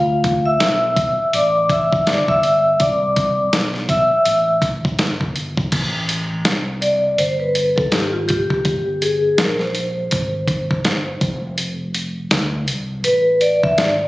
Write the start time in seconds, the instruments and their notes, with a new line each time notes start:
Already playing: fretless electric bass D2, vibraphone F4 F5
0.24 kick, closed hi-hat
0.45 vibraphone E5 E6
0.60 fretless electric bass B1, snare, closed hi-hat
0.96 kick, closed hi-hat
1.19 muted fretless electric bass stroke
1.33 fretless electric bass A1, vibraphone D5 D6, closed hi-hat
1.70 vibraphone E5 E6, kick, closed hi-hat
1.93 kick
2.07 fretless electric bass G1, vibraphone D5 D6, snare, closed hi-hat
2.28 vibraphone E5 E6, kick
2.43 closed hi-hat
2.80 fretless electric bass C2, vibraphone D5 D6, kick, closed hi-hat
3.16 kick, closed hi-hat
3.53 fretless electric bass B1, snare, closed hi-hat
3.74 snare
3.89 vibraphone E5 E6, kick, closed hi-hat
4.11 muted fretless electric bass stroke
4.25 fretless electric bass A1, closed hi-hat
4.62 kick, closed hi-hat
4.85 kick
4.99 fretless electric bass G1, snare, closed hi-hat
5.21 kick
5.36 closed hi-hat
5.57 kick
5.72 fretless electric bass A1, kick, closed hi-hat, crash
6.09 closed hi-hat
6.45 fretless electric bass C2, snare, closed hi-hat
6.82 vibraphone D5, closed hi-hat
7.18 fretless electric bass G1, vibraphone C5, closed hi-hat
7.40 vibraphone B4
7.55 closed hi-hat
7.76 vibraphone A4, kick
7.92 fretless electric bass G#1, vibraphone G4, snare, closed hi-hat
8.13 vibraphone F4
8.28 vibraphone G4, kick, closed hi-hat
8.50 kick
8.65 fretless electric bass G1, kick, closed hi-hat
9.02 vibraphone G#4, closed hi-hat
9.38 fretless electric bass A#1, vibraphone A#4, snare, closed hi-hat
9.59 vibraphone C5, snare
9.75 closed hi-hat
10.11 fretless electric bass G#1, kick, closed hi-hat
10.48 kick, closed hi-hat
10.71 kick
10.85 fretless electric bass G1, snare, closed hi-hat
11.21 fretless electric bass F1, kick, closed hi-hat
11.58 closed hi-hat
11.95 closed hi-hat
12.31 fretless electric bass D2, snare, closed hi-hat
12.68 fretless electric bass C2, closed hi-hat
13.04 fretless electric bass A1, vibraphone B4, closed hi-hat
13.41 vibraphone D5, closed hi-hat
13.63 vibraphone E5, kick
13.78 fretless electric bass G#1, vibraphone D5, snare, closed hi-hat